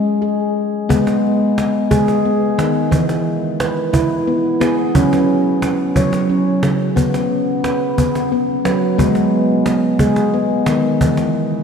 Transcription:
0.00 0.14 G#3 medium
0.22 0.90 G#4 medium
0.89 1.67 G#3 medium
0.89 1.57 B3 medium
0.89 cajon bass medium
1.07 cajon slap soft
1.58 cajon slap soft
1.91 2.42 G#3 medium
1.91 2.25 G#4 medium
1.91 cajon bass soft
2.08 cajon slap soft
2.25 2.93 B3 medium
2.58 2.84 D#3 medium
2.58 cajon slap soft
2.75 cajon slap soft
2.91 3.69 E3 medium
2.91 cajon bass medium
3.09 cajon slap soft
3.60 4.28 B4 medium
3.60 cajon slap medium
3.93 4.45 E4 medium
3.93 cajon bass medium
4.27 4.59 B3 medium
4.61 4.87 B3 medium
4.61 4.95 G#4 medium
4.61 cajon slap medium
4.78 cajon slap soft
4.95 5.72 F#3 medium
4.95 5.63 C#4 medium
4.95 cajon bass medium
5.13 cajon slap soft
5.62 cajon slap medium
5.96 6.47 F#3 medium
5.96 6.30 C#5 medium
5.96 cajon bass medium
6.13 cajon slap soft
6.30 6.97 C#4 medium
6.63 6.89 C#3 medium
6.63 cajon slap medium
6.96 7.73 B3 medium
6.96 cajon bass soft
7.14 cajon slap soft
7.64 8.32 B4 medium
7.64 cajon slap soft
7.81 cajon slap soft
7.98 8.31 B3 medium
7.98 cajon bass soft
8.15 cajon slap soft
8.32 8.66 B3 medium
8.32 cajon slap soft
8.65 8.91 F#3 medium
8.65 8.99 B4 medium
8.65 cajon slap soft
8.98 9.75 G#3 medium
8.98 9.66 B3 medium
8.98 cajon bass medium
9.15 cajon slap soft
9.66 cajon slap soft
9.99 10.51 G#3 medium
9.99 10.34 G#4 medium
9.99 cajon bass soft
10.16 cajon slap soft
10.34 11.01 B3 medium
10.66 10.93 D#3 medium
10.66 cajon slap medium
10.83 cajon slap soft
11.01 11.63 E3 medium
11.01 cajon bass medium
11.17 cajon slap soft

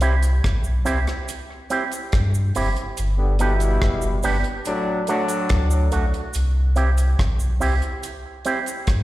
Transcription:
0.00 0.41 C2 loud
0.00 0.14 C4 medium
0.00 0.14 E4 loud
0.00 0.14 G4 medium
0.00 closed hi-hat medium
0.00 cabasa soft
0.22 closed hi-hat medium
0.22 cabasa medium
0.44 0.64 A1 loud
0.44 kick loud
0.44 cross-stick loud
0.44 closed hi-hat medium
0.64 0.86 B1 medium
0.64 cabasa soft
0.85 1.07 C2 medium
0.85 0.98 C4 medium
0.85 0.98 E4 medium
0.85 0.98 G4 medium
0.85 closed hi-hat medium
0.85 cabasa medium
1.07 cross-stick medium
1.07 closed hi-hat medium
1.28 closed hi-hat medium
1.28 cabasa medium
1.70 1.83 C4 medium
1.70 1.83 E4 medium
1.70 1.83 G4 medium
1.70 closed hi-hat medium
1.70 cabasa medium
1.92 closed hi-hat medium
1.92 cabasa medium
2.12 2.52 G2 medium
2.12 kick loud
2.12 cross-stick loud
2.12 closed hi-hat medium
2.34 cabasa medium
2.55 2.76 F#1 medium
2.55 2.68 C4 medium
2.55 2.68 E4 medium
2.55 2.68 G4 medium
2.55 open hi-hat medium
2.55 cabasa medium
2.76 closed hi-hat medium
2.97 3.78 G1 loud
2.97 closed hi-hat medium
2.97 cabasa medium
3.17 3.35 D3 medium
3.17 3.35 B3 medium
3.17 3.35 G4 medium
3.39 4.20 B2 medium
3.39 4.19 G3 medium
3.39 3.52 B3 medium
3.39 3.52 D4 medium
3.39 4.20 E4 medium
3.39 3.52 G4 medium
3.39 closed hi-hat medium
3.39 cabasa soft
3.60 closed hi-hat medium
3.60 cabasa medium
3.82 4.02 E1 medium
3.82 kick medium
3.82 cross-stick loud
3.82 closed hi-hat medium
4.02 4.23 F#1 medium
4.02 cabasa medium
4.23 4.44 G1 medium
4.23 4.36 B3 medium
4.23 4.36 D4 medium
4.23 4.36 G4 medium
4.23 open hi-hat medium
4.23 cabasa medium
4.44 closed hi-hat medium
4.65 5.00 A2 medium
4.65 5.00 F#3 medium
4.65 5.00 D4 medium
4.65 closed hi-hat medium
4.65 cabasa medium
5.07 5.88 A2 medium
5.07 5.88 F#3 medium
5.07 5.21 A3 medium
5.07 5.88 D4 loud
5.07 5.21 D4 medium
5.07 5.21 F#4 medium
5.07 closed hi-hat medium
5.07 cabasa medium
5.28 closed hi-hat medium
5.28 cabasa medium
5.49 5.90 D2 medium
5.49 kick loud
5.49 cross-stick loud
5.49 closed hi-hat medium
5.71 cabasa medium
5.92 6.13 B1 medium
5.92 6.04 A3 medium
5.92 6.05 D4 medium
5.92 6.05 F#4 medium
5.92 closed hi-hat medium
5.92 cabasa medium
6.14 closed hi-hat medium
6.34 7.15 C2 loud
6.34 closed hi-hat medium
6.34 cabasa medium
6.76 6.89 C4 medium
6.76 6.89 E4 medium
6.76 6.89 G4 medium
6.76 closed hi-hat medium
6.76 cabasa soft
6.98 closed hi-hat medium
6.98 cabasa medium
7.19 7.39 A1 medium
7.19 kick medium
7.19 cross-stick medium
7.19 closed hi-hat medium
7.40 7.60 B1 medium
7.40 cabasa medium
7.60 7.82 C2 medium
7.60 7.73 C4 medium
7.60 7.73 E4 medium
7.60 7.74 G4 medium
7.60 open hi-hat medium
7.60 cabasa medium
7.82 closed hi-hat soft
8.03 closed hi-hat medium
8.03 cabasa medium
8.45 8.58 C4 medium
8.45 8.58 E4 medium
8.45 8.58 G4 medium
8.45 closed hi-hat medium
8.45 cabasa soft
8.66 closed hi-hat medium
8.66 cabasa medium
8.87 9.03 G2 medium
8.87 kick loud
8.87 cross-stick loud
8.87 closed hi-hat medium

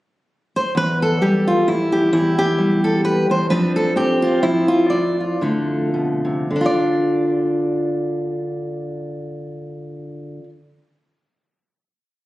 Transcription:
0.56 0.77 C5 medium
0.75 1.66 E2 medium
0.75 1.02 B4 medium
1.02 1.67 A4 medium
1.21 2.11 G3 medium
1.21 1.47 G4 medium
1.48 1.67 F4 medium
1.67 2.11 E2 medium
1.67 2.12 E4 medium
1.92 2.37 G4 medium
2.13 3.28 E2 medium
2.13 2.84 E4 medium
2.39 3.30 G4 medium
2.58 3.48 G3 medium
2.84 3.04 A4 medium
3.05 3.30 B4 medium
3.30 3.50 E2 medium
3.30 3.50 C5 medium
3.50 4.43 F3 medium
3.50 3.95 C4 soft
3.50 4.22 D4 soft
3.50 3.76 B4 medium
3.76 3.96 A4 medium
3.96 4.93 C4 medium
3.96 4.42 G4 medium
4.22 4.67 F4 medium
4.43 5.41 F3 medium
4.43 5.19 E4 medium
4.68 5.19 F4 medium
4.90 6.48 F2 medium
4.90 5.41 D5 medium
5.20 6.48 F4 soft
5.41 6.49 D3 medium
5.41 6.48 A3 soft
5.94 6.24 B2 medium
6.25 6.50 C3 medium
6.51 10.38 D3 medium
6.56 10.43 D4 medium
6.61 10.48 F4 medium
6.66 10.49 D5 medium

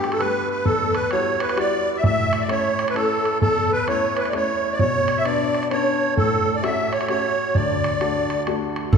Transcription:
0.00 0.62 G2 medium
0.00 0.18 G3 soft
0.00 0.18 A3 soft
0.00 0.19 B3 medium
0.00 0.13 G4 medium
0.00 bodhran medium
0.12 0.21 A4 medium
0.12 bodhran medium
0.19 0.64 G3 soft
0.19 0.65 A3 soft
0.19 0.65 B3 medium
0.19 0.49 B4 medium
0.19 bodhran medium
0.50 0.65 B4 medium
0.65 1.99 E2 medium
0.65 0.95 A4 medium
0.65 bodhran medium
0.94 1.10 B4 medium
0.94 bodhran medium
1.11 1.55 G3 soft
1.11 1.55 E4 soft
1.11 1.56 F#4 medium
1.11 1.41 C#5 medium
1.11 bodhran medium
1.40 1.58 B4 medium
1.40 bodhran medium
1.49 bodhran medium
1.56 2.01 G3 medium
1.56 2.02 E4 soft
1.56 2.02 F#4 medium
1.56 1.97 D5 loud
1.56 bodhran medium
1.97 2.03 E5 medium
2.04 3.37 A2 medium
2.04 2.43 E5 loud
2.04 bodhran medium
2.33 bodhran medium
2.41 2.50 D5 medium
2.48 2.93 A3 soft
2.48 2.93 C#4 soft
2.48 2.94 E4 medium
2.48 2.88 C#5 medium
2.48 bodhran medium
2.79 bodhran medium
2.88 2.95 B4 medium
2.88 bodhran medium
2.94 3.39 A3 medium
2.94 3.40 C#4 soft
2.94 3.40 E4 soft
2.94 3.38 A4 medium
2.94 bodhran medium
3.25 bodhran soft
3.42 4.75 E2 medium
3.42 3.72 A4 loud
3.42 bodhran medium
3.72 3.87 B4 medium
3.88 4.31 A3 soft
3.88 4.32 C#4 soft
3.88 4.32 E4 medium
3.88 4.18 C#5 medium
3.88 bodhran medium
4.17 4.29 B4 medium
4.17 bodhran medium
4.25 4.34 D5 medium
4.25 bodhran soft
4.33 4.78 A3 soft
4.33 4.78 C#4 soft
4.33 4.78 E4 medium
4.33 4.73 C#5 medium
4.33 bodhran medium
4.72 4.80 D5 medium
4.79 6.13 B2 medium
4.79 5.18 C#5 medium
4.79 bodhran medium
5.08 bodhran medium
5.17 5.26 E5 medium
5.25 5.69 B3 soft
5.25 5.70 D4 medium
5.25 5.68 D5 medium
5.25 bodhran medium
5.54 bodhran medium
5.63 bodhran medium
5.71 6.16 B3 medium
5.71 6.16 C#4 soft
5.71 6.16 D4 medium
5.71 6.14 C#5 medium
5.71 bodhran medium
6.17 7.51 A2 medium
6.17 6.56 A4 medium
6.17 bodhran medium
6.55 6.63 D5 medium
6.62 7.07 A3 soft
6.62 7.07 C#4 soft
6.62 7.08 F#4 medium
6.62 6.93 E5 medium
6.62 bodhran medium
6.92 7.07 C#5 medium
6.92 bodhran medium
7.01 bodhran medium
7.08 7.53 A3 soft
7.08 7.54 C#4 soft
7.08 7.54 F#4 medium
7.08 7.56 C#5 medium
7.08 bodhran medium
7.55 8.89 D2 medium
7.55 8.43 D5 medium
7.55 bodhran medium
7.84 bodhran medium
8.01 8.45 A3 soft
8.01 8.45 D4 soft
8.01 8.45 F#4 medium
8.01 bodhran medium
8.30 bodhran medium
8.47 8.92 A3 soft
8.47 8.91 D4 soft
8.47 8.92 F#4 medium
8.47 bodhran medium
8.76 bodhran medium
8.93 8.98 D2 loud
8.93 8.98 D3 medium
8.93 8.98 A4 medium
8.93 bodhran medium

